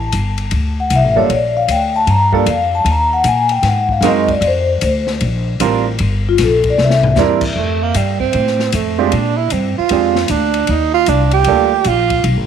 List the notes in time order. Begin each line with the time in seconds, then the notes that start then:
Already playing: A1 A5
0.12 G1, hi-hat pedal, ride
0.38 ride
0.51 D2, ride
0.80 F#5
0.90 C2, hi-hat pedal, ride
0.96 E5
1.04 A1
1.16 F#1 G3 A#3 D4 F4 A4 C#5
1.29 A#1, ride
1.35 D5
1.57 F5
1.68 D2 G5, hi-hat pedal, ride
1.96 A5
2.07 G2 A#5, ride
2.32 G3 A#3 D4 F4 A4 D5, kick
2.46 F2, hi-hat pedal, ride
2.50 F5
2.75 A5
2.85 D#2, ride
2.91 A#5
3.13 F#5
3.24 A#2 G#5, hi-hat pedal, ride
3.49 G5, ride
3.63 G#2, snare, ride
3.68 F#5
3.89 F5, kick
4.01 F#2 G#3 C4 D#4 F#4 A#4, snare, hi-hat pedal, ride
4.07 D#5
4.28 D5, kick, ride
4.41 F2, ride
4.47 C5
4.81 D2, hi-hat pedal, ride
5.07 snare
5.21 A#1, ride
5.60 A1 G3 C4 D4 F4 A#4, hi-hat pedal, ride
5.99 G1, ride
6.29 F4
6.38 A#1, snare, hi-hat pedal, ride
6.43 A4
6.64 kick, ride
6.70 D5
6.78 C2, snare
6.84 E5
6.90 snare
7.03 floor tom
7.15 E2 G3 C4 D4 E4 A#4, snare, hi-hat pedal
7.41 kick, crash
7.56 F2 A3
7.83 A#3
7.94 G2 G3, hi-hat pedal, ride
8.20 C4, kick
8.33 A2, ride
8.47 snare
8.59 snare
8.72 F2 A3, hi-hat pedal, ride
8.98 G#3 C4 D4 F4 G4
9.12 A#2 D4, ride
9.37 E4
9.50 G2 C4, hi-hat pedal, ride
9.78 F4, muted upright bass stroke
9.89 F2 G#3 C4 D4 F4 G4, ride
10.15 snare
10.28 D2 D4, hi-hat pedal, ride
10.54 ride
10.67 D#2, ride
10.71 D#4
10.94 F4
11.06 C2 D4, hi-hat pedal, ride
11.31 G4, ride
11.44 D2 G3 A#3 D4 A4, ride
11.49 F4
11.84 A#1 F4, hi-hat pedal, ride
12.10 kick, ride
12.24 B1, ride
12.37 A1